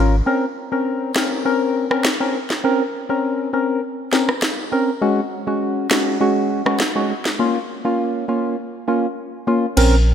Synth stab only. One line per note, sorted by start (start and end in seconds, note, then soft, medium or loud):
0.00 0.15 C#4 medium
0.00 0.16 F4 medium
0.00 0.16 A#4 medium
0.26 0.45 C4 medium
0.26 0.45 C#4 medium
0.26 0.46 A#4 loud
0.72 1.12 C4 medium
0.72 1.12 C#4 medium
0.72 1.13 A#4 medium
1.16 1.43 C4 medium
1.16 1.43 C#4 medium
1.16 1.43 A#4 medium
1.45 1.87 C4 medium
1.45 1.87 C#4 medium
1.45 1.87 A#4 loud
1.91 2.08 C4 medium
1.91 2.08 C#4 medium
1.91 2.08 A#4 medium
2.20 2.38 C4 medium
2.20 2.38 C#4 medium
2.20 2.38 A#4 medium
2.64 2.83 C4 medium
2.64 2.83 C#4 medium
2.64 2.83 A#4 loud
3.09 3.50 C4 medium
3.09 3.50 C#4 medium
3.09 3.50 A#4 medium
3.53 3.81 C4 medium
3.53 3.81 C#4 medium
3.53 3.81 A#4 medium
4.12 4.31 C4 medium
4.12 4.31 C#4 medium
4.12 4.32 A#4 medium
4.72 4.91 C4 medium
4.72 4.91 C#4 medium
4.72 4.91 A#4 medium
5.01 5.20 G#3 medium
5.01 5.21 C#4 medium
5.01 5.21 F#4 loud
5.47 5.87 G#3 medium
5.47 5.88 C#4 medium
5.47 5.88 F#4 medium
5.91 6.18 G#3 medium
5.91 6.18 C#4 medium
5.91 6.19 F#4 medium
6.20 6.62 G#3 loud
6.20 6.62 C#4 medium
6.20 6.63 F#4 loud
6.66 6.83 G#3 medium
6.66 6.83 C#4 medium
6.66 6.84 F#4 medium
6.95 7.13 G#3 medium
6.95 7.13 C#4 medium
6.95 7.13 F#4 medium
7.39 7.58 A#3 medium
7.39 7.58 C#4 medium
7.39 7.58 F4 loud
7.85 8.25 A#3 medium
7.85 8.25 C#4 medium
7.85 8.25 F4 medium
8.28 8.56 A#3 medium
8.28 8.56 C#4 medium
8.28 8.56 F4 medium
8.88 9.07 A#3 medium
8.88 9.07 C#4 medium
8.88 9.07 F4 medium
9.47 9.66 A#3 medium
9.47 9.66 C#4 medium
9.47 9.66 F4 medium
9.77 9.96 C4 medium
9.77 9.96 C#4 medium
9.77 9.96 A#4 loud